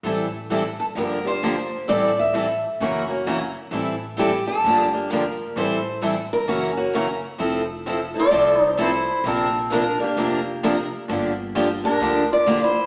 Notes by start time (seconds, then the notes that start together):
0.03 A1 E3 G3 C4 E4 A4
0.50 E3 G3 C4 E4 G4 A4
0.80 A4
0.95 G1 D3 F3 A#3 D4 G4 A#4
1.25 A#3 D4 G4 C5
1.43 D3 F3 A#3 D4 G4
1.88 A1 E3 G3 C4 E4 A4 D5
2.19 E5
2.33 E3 G3 C4 E4 A4
2.80 F#1 C#3 E3 F#3 A#3 C#4 E4 F#4 A#4
3.08 A#3 C#4 F#4
3.26 C#3 E3 F#3 A#3 C#4 E4 F#4 A#4
3.71 A1 E3 G3 C4 E4 A4
4.19 E3 G3 C4 E4 G4 A4
4.48 A4
4.64 G1 D3 F3 A#3 D4 G4
4.93 A#3 D4 G4
5.11 D3 F3 A#3 D4 G4 A#4
5.56 A1 E3 G3 C4 E4 A4 C5
6.02 E3 G3 C4 E4 A4
6.33 A#4
6.48 F#1 C#3 E3 F#3 A#3 C#4 E4 F#4 A#4
6.77 A#3 C#4 F#4
6.93 C#3 E3 F#3 A#3 C#4 E4 F#4 A#4
7.38 F1 F3 C4 E4 A4
7.86 F3 C4 E4 A4
8.14 C4 E4 F4 A4
8.20 D5
8.30 C2 F3 C4 E4 A4
8.61 D#4
8.67 C5
8.77 F3 C4 E4 A4 C5
8.81 E4
9.24 A#1 C3 F3 A#3 C4 D4 A4 A#4
9.71 C3 F3 A#3 D4 A#4
9.99 A#3 D4 A#4
10.03 G4
10.17 F1 C3 F3 A#3 D4 A#4
10.63 C3 F3 A#3 D4 A#4
11.08 G1 D3 F3 A#3 D4 G4
11.55 D3 F3 A#3 D4 G4
11.84 A#3 D4 G4 A#4
12.00 D2 D3 F3 A#3 D4 G4
12.32 F4 D5
12.46 D3 F3 A#3 D4 G4
12.63 E4 C5